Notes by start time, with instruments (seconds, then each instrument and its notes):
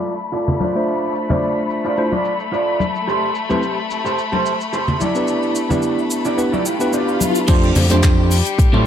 Already playing: violin section A3 B5, clean electric guitar F4 A4 D5
0.06 cabasa
0.20 cabasa
0.32 clean electric guitar F4 A4 D5, cabasa
0.48 low conga, cabasa
0.60 clean electric guitar F4 C5 D5, high conga, cabasa
0.75 tine electric piano A3 D4 F4 C5 E5, cabasa
0.87 cabasa
1.03 cabasa
1.15 cabasa
1.29 tine electric piano A3 D4 F4 C5 E5, clean electric guitar F4 C5 D5, high conga, low conga, cabasa
1.43 cabasa
1.70 cabasa
1.85 clean electric guitar F4 C5 D5, cabasa
1.97 tine electric piano A3 D4 E4 F4, cabasa
1.98 tine electric piano C5, cabasa
2.12 clean electric guitar F4 C5 D5, high conga, cabasa
2.25 cabasa
2.40 cabasa
2.52 clean electric guitar F4 C5 D5, cabasa
2.67 cabasa
2.80 high conga, cabasa
2.95 cabasa
3.07 clean electric guitar G4 A4 C5, cabasa
3.22 cabasa
3.35 cabasa
3.49 tine electric piano A3 C4 E4 G4 B4, clean electric guitar G4 A4 C5, high conga, cabasa
3.63 cabasa
3.90 cabasa
4.04 clean electric guitar G4 A4 C5, cabasa
4.18 cabasa
4.32 clean electric guitar G4 A4 C5, high conga, cabasa
4.45 cabasa
4.60 cabasa
4.73 clean electric guitar G4 A4 C5, cabasa
4.88 low conga, cabasa
5.00 clean electric guitar E4 G4 D5, high conga, cabasa
5.15 tine electric piano B3 D4 E4 G4 B4, cabasa
5.28 cabasa
5.43 cabasa
5.55 cabasa
5.69 tine electric piano B3 D4 E4 G4 B4, clean electric guitar E4 G4 D5, high conga, low conga, cabasa
5.82 cabasa
5.99 cabasa
6.10 cabasa
6.25 clean electric guitar E4 G4 D5, cabasa
6.37 tine electric piano B3 D4 E4 G4 B4, swell, cabasa
6.52 clean electric guitar E4 G4 D5, high conga, cabasa
6.66 clean electric guitar G5, cabasa
6.79 tine electric piano B3 D4 E4 G4 B4, cabasa
6.93 clean electric guitar E4 G4 D5, cabasa
7.08 cabasa
7.21 high conga, cabasa
7.35 cabasa
7.48 analog synth bass F2, violin section G3 G4, tine electric piano A3 D4 F4 G4 C5, clean electric guitar D4 F4 A4 C5, kick, closed hi-hat, crash, cabasa
7.50 cabasa
7.63 cabasa
7.75 analog synth bass F2, open hi-hat, low conga, cabasa
7.90 tine electric piano A3 D4 F4 G4 C5, clean electric guitar D4 F4 A4 C5, closed hi-hat, high conga, cabasa
8.03 kick, clap, closed hi-hat, cabasa
8.31 open hi-hat, cabasa
8.45 closed hi-hat, cabasa
8.59 analog synth bass A2, kick, closed hi-hat, cabasa
8.73 analog synth bass A2, clean electric guitar D4 F4 A4 C5, high conga